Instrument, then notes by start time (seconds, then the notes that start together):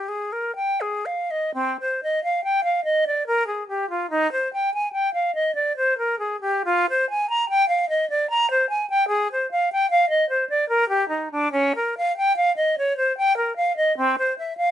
flute
0.08 G#4
0.32 A#4
0.56 G5
0.81 G#4
1.06 F5
1.31 D#5
1.54 C4
1.80 C5
2.03 D#5
2.24 F5
2.44 G5
2.64 F5
2.84 D#5
3.07 D5
3.27 A#4
3.47 G#4
3.69 G4
3.90 F4
4.10 D#4
4.32 C5
4.53 G5
4.74 G#5
4.93 G5
5.14 F5
5.35 D#5
5.55 D5
5.77 C5
5.98 A#4
6.19 G#4
6.41 G4
6.65 F4
6.90 C5
7.10 G#5
7.30 A#5
7.49 G5
7.69 F5
7.89 D#5
8.10 D5
8.30 A#5
8.51 C5
8.70 G#5
8.90 G5
9.08 G#4
9.32 C5
9.51 F5
9.72 G5
9.91 F5
10.09 D#5
10.29 C5
10.49 D5
10.69 A#4
10.89 G4
11.09 D#4
11.31 D4
11.52 C#4
11.76 A#4
11.97 F5
12.17 G5
12.36 F5
12.57 D#5
12.78 C#5
12.97 C5
13.18 G5
13.37 A#4
13.56 F5
13.76 D#5
13.97 C4
14.18 C5
14.39 E5
14.57 F5